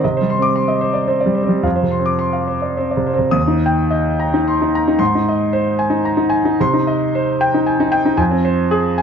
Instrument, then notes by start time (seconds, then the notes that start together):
grand piano
0.04 C3 D#5
0.17 C5
0.21 G3
0.30 C6
0.38 C4 D6
0.56 C6
0.68 D#5
0.81 C5
0.94 D5
1.08 C4 C5
1.21 D5
1.26 G3
1.35 C5
1.43 C4
1.49 G3
1.63 F2 F5
1.76 C5
1.83 C3
1.91 C6
2.00 C4
2.06 D6
2.19 C6
2.33 F5
2.47 C5
2.62 D5
2.77 C4 C5
2.91 D5
2.97 C3
3.07 C5
3.13 C4
3.19 C3
3.31 D#2 D#6
3.47 D#4
3.66 G5
3.91 D#5
4.20 A#5
4.34 D#4
4.48 C6
4.62 D#4
4.75 A#5
4.88 D#4
4.99 G#2 C6
5.15 D#4
5.29 D#5
5.53 C5
5.79 G#5
5.90 D#4
6.05 A#5
6.17 D#4
6.30 G#5
6.45 D#4
6.60 C3 C6
6.74 D#4
6.87 D#5
7.15 C5
7.41 G5
7.54 D#4
7.66 G#5
7.80 D#4
7.92 G5
8.05 D#4
8.17 F2 G#5
8.31 C4
8.45 C5
8.71 G#4
8.98 G#5